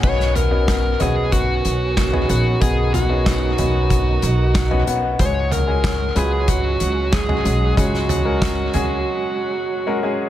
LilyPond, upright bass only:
\new Staff \with { instrumentName = "Upright bass" } { \clef bass \time 4/4 \key b \lydian \tempo 4 = 93 b,,4. b,,4 b,,4 ais,,8 | b,,4. b,,4 b,,4 b,,8 | cis,4. cis,4 cis,4 b,,8 | cis,4. cis,8 r2 | }